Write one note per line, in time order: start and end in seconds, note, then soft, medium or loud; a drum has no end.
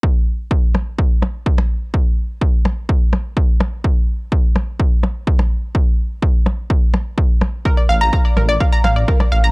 0.03 kick loud
0.51 kick loud
0.75 percussion blips medium
0.98 kick loud
1.22 percussion blips medium
1.46 kick loud
1.58 percussion blips medium
1.94 kick loud
2.41 kick loud
2.65 percussion blips medium
2.89 kick loud
3.13 percussion blips medium
3.37 kick loud
3.60 percussion blips medium
3.84 kick loud
4.32 kick loud
4.56 percussion blips medium
4.80 kick loud
5.03 percussion blips medium
5.27 kick loud
5.39 percussion blips medium
5.75 kick loud
6.22 kick loud
6.46 percussion blips medium
6.70 kick loud
6.94 percussion blips medium
7.18 kick loud
7.41 percussion blips medium
7.65 7.77 A#4 medium
7.65 kick loud
7.77 7.83 D5 medium
7.89 8.09 A1 medium
7.89 7.95 F5 loud
8.01 8.12 A#5 loud
8.13 8.22 A#5 medium
8.13 kick loud
8.25 8.34 D5 medium
8.37 8.56 A1 loud
8.37 8.42 A#4 medium
8.37 percussion blips medium
8.49 8.60 D5 loud
8.60 8.66 F5 medium
8.60 kick loud
8.72 8.82 A#5 loud
8.84 9.04 A1 medium
8.84 8.96 F5 loud
8.84 percussion blips medium
8.96 9.02 D5 medium
9.08 9.19 A#4 medium
9.08 kick loud
9.20 9.26 D5 medium
9.20 percussion blips medium
9.32 9.52 A1 medium
9.32 9.37 F5 medium
9.44 9.52 A#5 loud